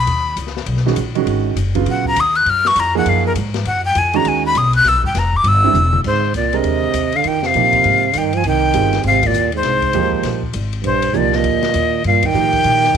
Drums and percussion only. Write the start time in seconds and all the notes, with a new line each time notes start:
0.07 ride
0.37 hi-hat pedal, ride
0.47 snare
0.57 snare
0.66 ride
0.77 snare
0.87 snare
0.96 hi-hat pedal, ride
1.15 ride
1.27 ride
1.57 hi-hat pedal, ride
1.75 kick, ride
1.86 ride
2.05 kick
2.16 hi-hat pedal, ride
2.35 ride
2.46 ride
2.65 snare
2.76 hi-hat pedal, ride
3.06 ride
3.35 hi-hat pedal, ride
3.54 snare, ride
3.65 ride
3.95 hi-hat pedal, ride
4.13 ride
4.25 ride
4.55 hi-hat pedal, ride
4.73 ride
4.84 snare, ride
5.04 kick
5.15 snare, hi-hat pedal, ride
5.34 kick
5.44 ride
5.74 hi-hat pedal, mid tom
5.93 mid tom
6.04 kick, crash
6.34 hi-hat pedal, ride
6.53 ride
6.64 ride
6.94 hi-hat pedal, ride
7.12 ride
7.24 ride
7.43 snare
7.54 hi-hat pedal, ride
7.73 kick, ride
7.84 ride
8.13 hi-hat pedal, ride
8.33 ride
8.44 ride
8.74 hi-hat pedal, ride
8.93 snare, ride
9.03 ride
9.23 kick, ride
9.34 hi-hat pedal
9.52 ride
9.63 snare, ride
9.82 kick, ride
9.93 hi-hat pedal, ride
10.13 kick
10.23 snare, ride
10.43 kick
10.53 hi-hat pedal, ride
10.73 ride
10.84 ride
11.02 ride
11.13 hi-hat pedal
11.32 snare
11.44 ride
11.63 snare, ride
11.74 hi-hat pedal, ride
12.04 ride
12.23 kick, ride
12.34 hi-hat pedal
12.53 kick, ride
12.64 ride
12.83 snare